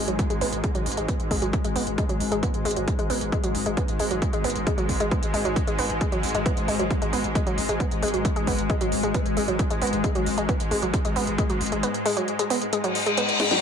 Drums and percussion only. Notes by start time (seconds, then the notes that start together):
0.08 closed hi-hat
0.19 kick, closed hi-hat
0.30 closed hi-hat
0.41 open hi-hat
0.53 closed hi-hat
0.64 kick, closed hi-hat
0.75 closed hi-hat
0.86 open hi-hat
0.92 closed hi-hat
0.97 closed hi-hat
1.08 kick, closed hi-hat
1.20 closed hi-hat
1.31 kick, open hi-hat
1.42 closed hi-hat
1.53 kick, closed hi-hat
1.64 closed hi-hat
1.76 open hi-hat
1.87 closed hi-hat
1.98 kick, closed hi-hat
2.09 closed hi-hat
2.20 open hi-hat
2.32 closed hi-hat
2.43 kick, closed hi-hat
2.54 closed hi-hat
2.65 open hi-hat
2.71 closed hi-hat
2.76 closed hi-hat
2.88 kick, closed hi-hat
2.99 closed hi-hat
3.10 open hi-hat
3.21 closed hi-hat
3.32 kick, closed hi-hat
3.44 closed hi-hat
3.55 open hi-hat
3.66 closed hi-hat
3.77 kick, closed hi-hat
3.88 closed hi-hat
3.99 open hi-hat
4.11 closed hi-hat
4.22 kick, closed hi-hat
4.33 closed hi-hat
4.44 open hi-hat
4.50 closed hi-hat
4.56 closed hi-hat
4.67 kick, closed hi-hat
4.78 closed hi-hat
4.89 kick, open hi-hat
5.00 closed hi-hat
5.11 kick, closed hi-hat
5.23 closed hi-hat
5.34 open hi-hat
5.45 closed hi-hat
5.56 kick, closed hi-hat
5.67 closed hi-hat
5.79 open hi-hat
5.90 closed hi-hat
6.01 kick, closed hi-hat
6.12 closed hi-hat
6.23 open hi-hat
6.29 closed hi-hat
6.35 closed hi-hat
6.46 kick, closed hi-hat
6.57 closed hi-hat
6.68 open hi-hat
6.79 closed hi-hat
6.91 kick, closed hi-hat
7.02 closed hi-hat
7.13 open hi-hat
7.24 closed hi-hat
7.35 kick, closed hi-hat
7.47 closed hi-hat
7.58 open hi-hat
7.69 closed hi-hat
7.80 kick, closed hi-hat
7.91 closed hi-hat
8.03 open hi-hat
8.08 closed hi-hat
8.14 closed hi-hat
8.25 kick, closed hi-hat
8.36 closed hi-hat
8.47 kick, open hi-hat
8.58 closed hi-hat
8.70 kick, closed hi-hat
8.81 closed hi-hat
8.92 open hi-hat
9.03 closed hi-hat
9.14 kick, closed hi-hat
9.26 closed hi-hat
9.37 open hi-hat
9.48 closed hi-hat
9.59 kick, closed hi-hat
9.70 closed hi-hat
9.82 open hi-hat
9.87 closed hi-hat
9.93 closed hi-hat
10.04 kick, closed hi-hat
10.15 closed hi-hat
10.26 open hi-hat
10.38 closed hi-hat
10.49 kick, closed hi-hat
10.60 closed hi-hat
10.71 open hi-hat
10.82 closed hi-hat
10.94 kick, closed hi-hat
11.05 closed hi-hat
11.16 open hi-hat
11.27 closed hi-hat
11.38 kick, closed hi-hat
11.50 closed hi-hat
11.61 open hi-hat
11.66 closed hi-hat
11.72 closed hi-hat
11.83 closed hi-hat
11.94 closed hi-hat
12.06 open hi-hat
12.17 closed hi-hat
12.28 closed hi-hat
12.39 closed hi-hat
12.50 open hi-hat
12.62 closed hi-hat
12.73 closed hi-hat
12.84 closed hi-hat
12.95 open hi-hat
13.06 closed hi-hat
13.17 closed hi-hat
13.29 closed hi-hat
13.40 snare, open hi-hat
13.45 closed hi-hat
13.51 snare, closed hi-hat